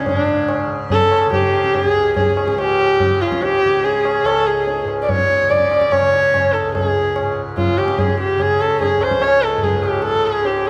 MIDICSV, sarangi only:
0, 0, Header, 1, 2, 480
1, 0, Start_track
1, 0, Tempo, 417827
1, 80, Time_signature, 4, 2, 24, 8
1, 5840, Tempo, 412939
1, 12367, End_track
2, 0, Start_track
2, 0, Title_t, "Sarangi"
2, 0, Program_c, 0, 110
2, 96, Note_on_c, 0, 62, 84
2, 765, Note_off_c, 0, 62, 0
2, 1061, Note_on_c, 0, 69, 108
2, 1501, Note_off_c, 0, 69, 0
2, 1530, Note_on_c, 0, 67, 89
2, 2000, Note_off_c, 0, 67, 0
2, 2000, Note_on_c, 0, 67, 103
2, 2126, Note_off_c, 0, 67, 0
2, 2126, Note_on_c, 0, 68, 103
2, 2483, Note_off_c, 0, 68, 0
2, 2492, Note_on_c, 0, 68, 82
2, 2891, Note_off_c, 0, 68, 0
2, 2891, Note_on_c, 0, 68, 67
2, 2970, Note_on_c, 0, 67, 104
2, 2988, Note_off_c, 0, 68, 0
2, 3692, Note_on_c, 0, 65, 79
2, 3709, Note_off_c, 0, 67, 0
2, 3930, Note_on_c, 0, 67, 98
2, 3947, Note_off_c, 0, 65, 0
2, 4412, Note_on_c, 0, 68, 85
2, 4429, Note_off_c, 0, 67, 0
2, 4880, Note_on_c, 0, 69, 101
2, 4897, Note_off_c, 0, 68, 0
2, 5127, Note_on_c, 0, 68, 83
2, 5145, Note_off_c, 0, 69, 0
2, 5603, Note_off_c, 0, 68, 0
2, 5768, Note_on_c, 0, 74, 68
2, 5846, Note_on_c, 0, 73, 105
2, 5864, Note_off_c, 0, 74, 0
2, 6324, Note_on_c, 0, 74, 94
2, 6341, Note_off_c, 0, 73, 0
2, 6811, Note_on_c, 0, 73, 101
2, 6828, Note_off_c, 0, 74, 0
2, 7528, Note_on_c, 0, 69, 80
2, 7545, Note_off_c, 0, 73, 0
2, 7768, Note_off_c, 0, 69, 0
2, 7773, Note_on_c, 0, 68, 83
2, 8446, Note_off_c, 0, 68, 0
2, 8732, Note_on_c, 0, 65, 81
2, 8970, Note_on_c, 0, 67, 77
2, 8987, Note_off_c, 0, 65, 0
2, 9220, Note_on_c, 0, 68, 76
2, 9237, Note_off_c, 0, 67, 0
2, 9455, Note_off_c, 0, 68, 0
2, 9466, Note_on_c, 0, 67, 78
2, 9704, Note_on_c, 0, 68, 92
2, 9721, Note_off_c, 0, 67, 0
2, 9939, Note_on_c, 0, 69, 89
2, 9956, Note_off_c, 0, 68, 0
2, 10174, Note_off_c, 0, 69, 0
2, 10181, Note_on_c, 0, 68, 81
2, 10423, Note_on_c, 0, 72, 90
2, 10440, Note_off_c, 0, 68, 0
2, 10654, Note_on_c, 0, 73, 107
2, 10671, Note_off_c, 0, 72, 0
2, 10888, Note_on_c, 0, 69, 91
2, 10906, Note_off_c, 0, 73, 0
2, 11130, Note_on_c, 0, 68, 77
2, 11147, Note_off_c, 0, 69, 0
2, 11353, Note_on_c, 0, 67, 78
2, 11370, Note_off_c, 0, 68, 0
2, 11599, Note_off_c, 0, 67, 0
2, 11606, Note_on_c, 0, 69, 96
2, 11853, Note_on_c, 0, 68, 86
2, 11870, Note_off_c, 0, 69, 0
2, 12094, Note_on_c, 0, 67, 77
2, 12111, Note_off_c, 0, 68, 0
2, 12351, Note_off_c, 0, 67, 0
2, 12367, End_track
0, 0, End_of_file